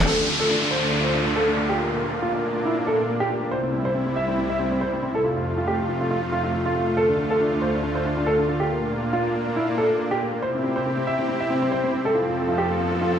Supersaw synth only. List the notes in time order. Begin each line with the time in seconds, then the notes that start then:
0.06 D2 D3 A3 F4
1.79 A#2 A#3 D4
3.52 C2 C3 G3 E4
5.25 F2 C3 A3 F4
6.97 D2 D3
8.70 A#2 A#3 D4
10.42 C3 C4 E4 G4
12.15 F2 F3 A4